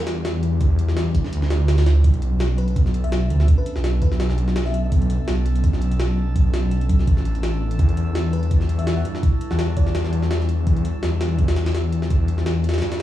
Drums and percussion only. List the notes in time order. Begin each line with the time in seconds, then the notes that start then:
0.07 snare, closed hi-hat
0.25 snare, closed hi-hat
0.43 closed hi-hat
0.61 kick, closed hi-hat
0.79 closed hi-hat
0.89 snare
0.97 snare, closed hi-hat
1.15 kick, closed hi-hat
1.24 snare
1.33 closed hi-hat
1.42 snare
1.50 snare, closed hi-hat
1.68 snare, closed hi-hat
1.78 snare, closed hi-hat
1.86 snare, closed hi-hat
2.04 kick, closed hi-hat
2.14 closed hi-hat
2.22 closed hi-hat
2.40 snare, closed hi-hat
2.58 closed hi-hat
2.68 closed hi-hat
2.76 kick, closed hi-hat
2.86 snare
2.94 closed hi-hat
3.04 closed hi-hat
3.12 snare, closed hi-hat
3.30 closed hi-hat
3.40 snare
3.48 kick, closed hi-hat
3.66 closed hi-hat
3.76 snare
3.84 snare, closed hi-hat
4.02 kick, closed hi-hat
4.12 snare
4.20 snare, closed hi-hat
4.30 snare
4.38 closed hi-hat
4.48 snare
4.56 snare, closed hi-hat
4.66 snare
4.74 closed hi-hat
4.92 kick, closed hi-hat
5.02 closed hi-hat
5.10 closed hi-hat
5.28 snare, closed hi-hat
5.46 closed hi-hat
5.56 closed hi-hat
5.64 kick, closed hi-hat
5.73 snare
5.82 closed hi-hat
5.92 closed hi-hat
6.00 snare, closed hi-hat
6.36 kick, closed hi-hat
6.54 snare, closed hi-hat
6.71 closed hi-hat
6.81 closed hi-hat
6.89 kick, closed hi-hat
6.99 snare
7.07 kick, closed hi-hat
7.17 snare
7.25 closed hi-hat
7.35 closed hi-hat
7.43 snare, closed hi-hat
7.71 closed hi-hat
7.79 kick, closed hi-hat
7.89 closed hi-hat
7.97 closed hi-hat
8.15 snare, closed hi-hat
8.33 closed hi-hat
8.43 closed hi-hat
8.51 kick, closed hi-hat
8.61 snare
8.69 closed hi-hat
8.79 closed hi-hat
8.87 snare, closed hi-hat
9.05 closed hi-hat
9.15 snare
9.23 kick, closed hi-hat
9.41 closed hi-hat
9.51 snare
9.59 snare, closed hi-hat
9.77 kick, closed hi-hat
9.87 snare
9.95 snare, closed hi-hat
10.04 snare
10.13 closed hi-hat
10.22 snare
10.31 snare, closed hi-hat
10.41 snare
10.49 closed hi-hat
10.67 kick, closed hi-hat
10.77 closed hi-hat
10.85 closed hi-hat
11.03 snare, closed hi-hat
11.21 snare, closed hi-hat
11.39 kick, closed hi-hat
11.48 snare, closed hi-hat
11.56 snare, closed hi-hat
11.66 snare, closed hi-hat
11.75 snare, closed hi-hat
11.92 closed hi-hat
12.02 snare
12.10 kick, closed hi-hat
12.28 closed hi-hat
12.38 snare
12.46 snare, closed hi-hat
12.64 closed hi-hat
12.69 snare, closed hi-hat
12.74 snare, closed hi-hat
12.78 snare, closed hi-hat
12.82 snare, closed hi-hat
12.92 snare, closed hi-hat